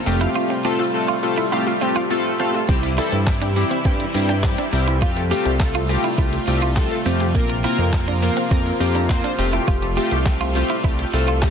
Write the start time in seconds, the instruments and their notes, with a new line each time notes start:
Already playing: supersaw synth C3 F4
0.06 analog synth bass F1, supersaw synth G3 A3, analog polysynth A3 C4 F4 G4, synth arpeggio sound C4, muted clean electric guitar stroke, open hi-hat
0.21 clean electric guitar E4, synth arpeggio sound F5, closed hi-hat
0.36 clean electric guitar F4
0.50 synth arpeggio sound C4, muted clean electric guitar stroke
0.65 analog polysynth A3 C4 F4 A4, clean electric guitar G4
0.79 synth arpeggio sound F4
0.94 analog polysynth A3 C4 F4 A4
1.08 clean electric guitar F4
1.23 analog polysynth A3 C4 F4 A4, synth arpeggio sound F4, muted clean electric guitar stroke
1.38 clean electric guitar E4
1.52 analog polysynth A3 C4 F4 G4, clean electric guitar E4, synth arpeggio sound F5
1.67 synth arpeggio sound F4
1.81 analog polysynth A3 C4 F4 G4, synth arpeggio sound C4, muted clean electric guitar stroke
1.96 clean electric guitar F4, synth arpeggio sound F5
2.10 analog polysynth A3 C4 F4 A4, synth arpeggio sound F4
2.39 analog polysynth A3 C4 F4 A4, clean electric guitar C4, synth arpeggio sound F5
2.54 synth arpeggio sound F4
2.69 analog synth bass C2, supersaw synth C3 E3 G3 E4, synth arpeggio sound G3, analog polysynth G3 C4 E4 G4, clean electric guitar C4, kick, crash, tambourine, shaker
2.83 muted clean electric guitar stroke, closed hi-hat, shaker
2.98 analog polysynth G3 C4 E4 A4, clean electric guitar E4, open hi-hat, tambourine, shaker
3.12 analog synth bass G2, synth arpeggio sound G3, closed hi-hat, shaker
3.27 analog polysynth G3 C4 E4 G4, synth arpeggio sound E5, kick, snare, clap, tambourine, shaker
3.42 clean electric guitar D4, synth arpeggio sound G5, closed hi-hat, shaker
3.56 synth arpeggio sound G3, analog polysynth G3 C4 E4 G4, muted clean electric guitar stroke, open hi-hat, shaker
3.71 clean electric guitar C4, synth arpeggio sound E5, closed hi-hat, shaker
3.85 analog synth bass G2, analog polysynth G3 C4 E4 G4, clean electric guitar C4, synth arpeggio sound G5, kick, tambourine, shaker
4.00 synth arpeggio sound G3, closed hi-hat, shaker
4.14 analog synth bass G2, analog polysynth G3 C4 E4 G4, muted clean electric guitar stroke, open hi-hat, tambourine, shaker
4.29 clean electric guitar D4, synth arpeggio sound G5, closed hi-hat, shaker
4.43 analog polysynth G3 C4 E4 G4, synth arpeggio sound G3, kick, snare, clap, tambourine, shaker
4.58 clean electric guitar D4, synth arpeggio sound E5, closed hi-hat, shaker
4.73 analog synth bass C2, analog polysynth G3 C4 E4 G4, muted clean electric guitar stroke, open hi-hat, tambourine, shaker
4.87 synth arpeggio sound G3, clean electric guitar E4, closed hi-hat, shaker
5.02 analog synth bass F2, analog polysynth A3 C4 F4 G4, supersaw synth A3 F4, clean electric guitar F4, synth arpeggio sound G4, kick, tambourine, shaker
5.16 synth arpeggio sound A4, muted clean electric guitar stroke, closed hi-hat, shaker
5.31 analog polysynth A3 C4 F4 G4, synth arpeggio sound A3, clean electric guitar G4, open hi-hat, tambourine, shaker
5.45 analog synth bass C2, synth arpeggio sound G4, closed hi-hat, shaker
5.60 analog polysynth A3 C4 F4 A4, synth arpeggio sound A4, kick, snare, clap, tambourine, shaker
5.74 synth arpeggio sound A3, clean electric guitar F4, closed hi-hat, shaker
5.89 analog polysynth A3 C4 F4 G4, synth arpeggio sound G4, muted clean electric guitar stroke, open hi-hat, shaker
6.04 clean electric guitar E4, closed hi-hat, shaker
6.18 analog synth bass C2, analog polysynth A3 C4 F4 G4, synth arpeggio sound A3, clean electric guitar E4, kick, tambourine, shaker
6.33 synth arpeggio sound G4, closed hi-hat, shaker
6.47 analog synth bass C2, analog polysynth A3 C4 F4 G4, muted clean electric guitar stroke, open hi-hat, tambourine, shaker
6.62 clean electric guitar F4, closed hi-hat, shaker
6.76 analog polysynth A3 C4 F4 A4, synth arpeggio sound G4, kick, snare, clap, tambourine, shaker
6.91 synth arpeggio sound A4, closed hi-hat, shaker
7.05 analog synth bass F2, analog polysynth A3 C4 F4 G4, synth arpeggio sound A3, clean electric guitar C4, open hi-hat, tambourine, shaker
7.20 synth arpeggio sound G4, closed hi-hat, shaker
7.35 analog synth bass A#1, supersaw synth F3 A#3 F4, analog polysynth A#3 C4 F4 A#4, synth arpeggio sound A#3, clean electric guitar A#3, kick, tambourine, shaker
7.50 muted clean electric guitar stroke, closed hi-hat, shaker
7.64 analog polysynth A#3 C4 F4 A#4, clean electric guitar E4, open hi-hat, tambourine, shaker
7.78 analog synth bass F2, synth arpeggio sound A#3, closed hi-hat, shaker
7.93 synth arpeggio sound F5, kick, snare, clap, tambourine, shaker
8.08 clean electric guitar D4, synth arpeggio sound A#5, closed hi-hat, shaker
8.22 analog polysynth A#3 C4 F4 A#4, synth arpeggio sound A#3, muted clean electric guitar stroke, open hi-hat, shaker
8.37 clean electric guitar C4, synth arpeggio sound F5, closed hi-hat, shaker
8.51 analog synth bass F2, analog polysynth A#3 C4 F4 A#4, clean electric guitar C4, synth arpeggio sound A#5, kick, tambourine, shaker
8.66 synth arpeggio sound A#3, closed hi-hat, shaker
8.80 analog synth bass F2, analog polysynth A#3 C4 F4 G4, muted clean electric guitar stroke, open hi-hat, tambourine, shaker
8.95 clean electric guitar D4, synth arpeggio sound A#5, closed hi-hat, shaker
9.09 analog polysynth A#3 C4 F4 C5, synth arpeggio sound A#3, kick, snare, clap, tambourine, shaker
9.24 clean electric guitar D4, synth arpeggio sound F5, closed hi-hat, shaker
9.38 analog synth bass F1, supersaw synth G3 A3 F4, analog polysynth A3 C4 F4 G4, muted clean electric guitar stroke, open hi-hat, tambourine, shaker
9.53 synth arpeggio sound A3, clean electric guitar E4, closed hi-hat, shaker
9.68 analog synth bass F1, clean electric guitar F4, synth arpeggio sound G4, kick, tambourine, shaker
9.82 synth arpeggio sound A4, muted clean electric guitar stroke, closed hi-hat, shaker
9.97 analog polysynth A3 C4 F4 G4, synth arpeggio sound A3, clean electric guitar G4, open hi-hat, tambourine, shaker
10.11 analog synth bass C2, synth arpeggio sound G4, closed hi-hat, shaker
10.26 analog polysynth A3 C4 F4 G4, synth arpeggio sound A4, kick, snare, clap, tambourine, shaker
10.40 synth arpeggio sound A3, clean electric guitar F4, closed hi-hat, shaker
10.55 analog polysynth A3 C4 F4 G4, synth arpeggio sound G4, muted clean electric guitar stroke, open hi-hat, tambourine, shaker
10.70 clean electric guitar E4, closed hi-hat, shaker
10.84 analog synth bass C2, analog polysynth A3 C4 F4 G4, synth arpeggio sound A3, clean electric guitar E4, kick, shaker
10.99 synth arpeggio sound G4, closed hi-hat, shaker
11.13 analog synth bass C2, analog polysynth A3 C4 F4 A4, muted clean electric guitar stroke, open hi-hat, tambourine, shaker
11.28 clean electric guitar F4, closed hi-hat, shaker
11.42 analog polysynth A3 C4 F4 G4, synth arpeggio sound G4, kick, snare, clap, tambourine, shaker